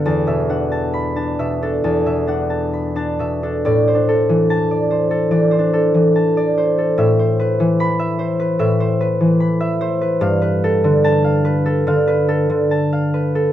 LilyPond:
<<
  \new Staff \with { instrumentName = "Harp" } { \time 4/4 \key a \minor \tempo 4 = 72 << { r4 b''8 r2 r8 | r4 a''2. | r4 b''2.~ | b''4 a''2. | } \\ { <a' a''>16 e''16 fis''16 a''8 a''16 e''16 a'16 a''16 e''16 fis''16 a''16 b''16 a''16 e''16 a'16 | d''16 c''16 a'16 e8 d''16 c''16 a'16 d''16 c''16 a'16 e16 a''16 d''16 c''16 a'16 | e''16 c''16 b'16 e8 e''16 c''16 b'16 e''16 c''16 b'16 e16 b''16 e''16 c''16 b'16 | f''16 b'16 a'16 d8 f''16 b'16 a'16 f''16 b'16 a'16 d16 a''16 f''16 b'16 a'16 | } >> }
  \new Staff \with { instrumentName = "Harp" } { \clef bass \time 4/4 \key a \minor <e, b d'>16 b,16 d'8. d'16 b,16 d'16 e,16 b,16 d'8. d'16 b,16 d'16 | \tuplet 3/2 { a,8 d'4~ } d'4 \tuplet 3/2 { e8 d'4~ } d'4 | a,2 a,2 | g,2 d2 | }
>>